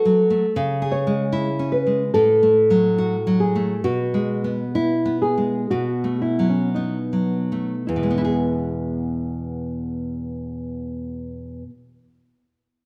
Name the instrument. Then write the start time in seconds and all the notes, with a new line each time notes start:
nylon-string guitar
Already playing: F#4 A4
0.05 F#3
0.30 A3
0.56 C#3
0.82 G#4
0.92 C#5
1.07 G#3
1.32 E4
1.59 C#4
1.72 B4
1.87 G#3
2.14 A2 A4
2.43 A3
2.70 F#3
2.98 F#4
3.27 F#3
3.40 G#4
3.55 A3
3.84 B2 F#4
4.14 G#3
4.44 B3
4.75 E4
5.06 B3
5.22 G#4
5.38 G#3
5.70 B2 F#4
6.04 A3
6.22 E4
6.39 F#3
6.49 C#4
6.74 B3 D#4
7.13 F#3
7.52 A3
7.87 E2 E4
7.96 B2
8.03 G#3
8.10 B3
8.18 E4
8.25 G#4